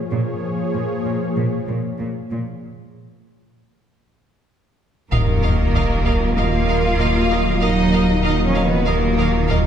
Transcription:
Already playing: F3 A#3 C#5
0.11 A#2 F3 A#3 G#4 C#5
0.75 A#2
1.06 A#2
1.36 A#2
1.68 A#2
1.99 A#2
2.31 A#2
5.11 D#1 D#2 D#3 F#3 A#3 F4 A#4 D#5 F5, taiko, sub drop
5.43 A#4 D#5 F5
5.74 D#2 A#4 D#5 F5
6.05 A#4 D#5 F5, taiko
6.36 D#2 A#3 F4 A#4 D#5 F5
6.68 A#4 D#5 F5
6.99 D#2 A#4 D#5 F5
7.30 A#4 D#5 F5
7.61 D#2 F#3 D#4 A#4 D#5 F5
7.92 A#4 D#5 F5
8.24 D#2 F#3 D#4 A#4 D#5 F5
8.45 F3 C#4 C#5
8.55 A#4 D#5 F5
8.66 D#3 B3 B4
8.86 D#2 D#3 A#3 A#4 D#5 F5
9.18 A#4 D#5 F5
9.49 D#2 A#4 D#5 F5

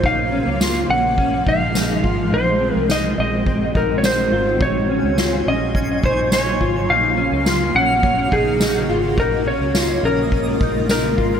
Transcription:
Already playing: A#3
0.04 A#1 C#3 F3 G#3 D#4 F5, kick
0.32 C#4, ride
0.46 C#2
0.60 F4, snare, ride, tambourine
0.89 A#1 C#4 F#5, ride
1.18 C#4, kick, ride
1.46 A#1 D#4 F5, kick, ride
1.74 D#4, snare, ride, tambourine
2.03 G#1 F4, kick, ride
2.31 A#1 D#3 C4 D#4 F#4 C5, ride
2.60 C4, ride
2.75 C2 A#4
2.89 D#4 D#5, snare, ride, tambourine
3.18 A#1 C4 D#5, ride
3.46 C4, kick
3.75 A#1 D#4 A#4, kick, ride
3.98 C#5
4.03 D#4 C5, snare, tambourine
4.32 G#1 F4, ride
4.60 A#1 C#3 F#3 A#3 D#4 F4 C#5 G#5, kick
4.80 C6
4.89 C#4, ride
4.98 C#6
5.03 C#2
5.18 F4, snare, tambourine
5.46 A#1 C#4 D#5, ride
5.75 C#4, kick
6.04 A#1 D#4 C5, kick, ride
6.31 D#4 C#5, snare, ride, tambourine
6.60 G#1 F4, kick, ride
6.88 A#1 D#4 F#4 F5 F6, ride
7.17 C#4, ride
7.32 C#2
7.46 F4, snare, ride, tambourine
7.74 A#1 C#4 F#5, ride
8.03 C#4, kick, ride
8.32 A#1 D#4 G#4, kick, ride
8.60 D#4, snare, tambourine
8.89 G#1 F4, ride
9.18 A#1 G#3 D#4 F4 A#4 D#5, kick, ride
9.46 C#4 C#5, ride
9.60 C#2
9.74 F4, snare, ride, tambourine
10.03 A#1 C#4 A#4, ride
10.31 C#4, kick, ride
10.61 A#1 D#4, kick, ride
10.89 D#4 A#4, snare, ride, tambourine
11.17 G#1 F4, kick, ride

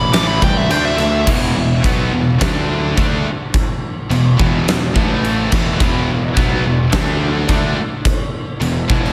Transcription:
Already playing: A1 E2 B2 E3
0.00 B5
0.12 A1 A2 E3 A3 D6, snare, crash
0.27 B5
0.42 C2 A2 E3 G5, kick, crash
0.57 E5
0.69 D2 D3 A3 D4 G5, crash
0.85 E5
0.98 D2 D3 A3 E5, snare, crash
1.27 E1 E2 B2 E3, kick, crash
1.56 E1 E2 B2
1.84 B1 B2 F#3 B3, kick, crash
2.13 E1 E2 B2
2.41 D2 D3 A3 D4, kick, snare, crash
2.97 D2 D3 A3 D4, kick, crash
3.54 kick, crash
4.10 E1 E2 B2, crash
4.39 E1 E2 B2 E3, kick
4.67 E1 E2 B2, snare, crash
4.95 A1 A2 E3 A3, kick
5.24 crash
5.52 E1 E2 B2 E3, kick, crash
5.80 E1 E2 B2 E3, kick, crash
6.09 E1 E2 B2
6.36 B1 B2 F#3 B3, kick, crash
6.64 E1 E2 B2
6.92 D2 D3 A3 D4, kick, snare, crash
7.48 D2 D3 A3 D4, kick, crash
8.05 kick, crash
8.60 E1 E2 B2, crash
8.88 E1 E2 B2 E3, kick
9.05 snare

